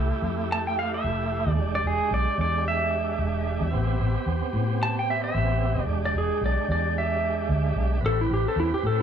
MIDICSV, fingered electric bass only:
0, 0, Header, 1, 3, 480
1, 0, Start_track
1, 0, Key_signature, 0, "minor"
1, 0, Tempo, 538600
1, 1398, Time_signature, 4, 2, 24, 8
1, 8041, End_track
2, 0, Start_track
2, 0, Title_t, "Fingered electric bass"
2, 0, Program_c, 0, 33
2, 197, Note_on_c, 0, 41, 85
2, 883, Note_off_c, 0, 41, 0
2, 929, Note_on_c, 0, 29, 92
2, 1275, Note_off_c, 0, 29, 0
2, 1297, Note_on_c, 0, 39, 102
2, 1395, Note_off_c, 0, 39, 0
2, 1401, Note_on_c, 0, 28, 93
2, 1626, Note_off_c, 0, 28, 0
2, 1640, Note_on_c, 0, 28, 85
2, 1765, Note_off_c, 0, 28, 0
2, 1879, Note_on_c, 0, 35, 96
2, 2004, Note_off_c, 0, 35, 0
2, 2121, Note_on_c, 0, 40, 85
2, 2805, Note_off_c, 0, 40, 0
2, 2839, Note_on_c, 0, 28, 96
2, 3190, Note_off_c, 0, 28, 0
2, 3213, Note_on_c, 0, 40, 102
2, 3314, Note_off_c, 0, 40, 0
2, 3322, Note_on_c, 0, 33, 94
2, 3547, Note_off_c, 0, 33, 0
2, 3562, Note_on_c, 0, 33, 87
2, 3686, Note_off_c, 0, 33, 0
2, 3799, Note_on_c, 0, 40, 90
2, 3924, Note_off_c, 0, 40, 0
2, 4039, Note_on_c, 0, 45, 88
2, 4724, Note_off_c, 0, 45, 0
2, 4764, Note_on_c, 0, 33, 93
2, 5113, Note_off_c, 0, 33, 0
2, 5129, Note_on_c, 0, 29, 100
2, 5231, Note_off_c, 0, 29, 0
2, 5237, Note_on_c, 0, 28, 94
2, 5464, Note_off_c, 0, 28, 0
2, 5475, Note_on_c, 0, 28, 97
2, 5602, Note_off_c, 0, 28, 0
2, 5716, Note_on_c, 0, 35, 89
2, 5842, Note_off_c, 0, 35, 0
2, 5958, Note_on_c, 0, 40, 84
2, 6642, Note_off_c, 0, 40, 0
2, 6675, Note_on_c, 0, 38, 84
2, 6892, Note_off_c, 0, 38, 0
2, 6915, Note_on_c, 0, 35, 84
2, 7132, Note_off_c, 0, 35, 0
2, 7151, Note_on_c, 0, 33, 100
2, 7380, Note_off_c, 0, 33, 0
2, 7392, Note_on_c, 0, 33, 82
2, 7519, Note_off_c, 0, 33, 0
2, 7629, Note_on_c, 0, 40, 90
2, 7757, Note_off_c, 0, 40, 0
2, 7872, Note_on_c, 0, 45, 86
2, 8041, Note_off_c, 0, 45, 0
2, 8041, End_track
3, 0, Start_track
3, 0, Title_t, "Muted fingered electric bass strokes"
3, 93, Note_on_c, 9, 29, 35
3, 183, Note_off_c, 9, 29, 0
3, 2008, Note_on_c, 9, 29, 38
3, 2097, Note_off_c, 9, 29, 0
3, 3933, Note_on_c, 9, 29, 36
3, 4022, Note_off_c, 9, 29, 0
3, 7771, Note_on_c, 9, 29, 35
3, 7860, Note_off_c, 9, 29, 0
3, 8041, End_track
0, 0, End_of_file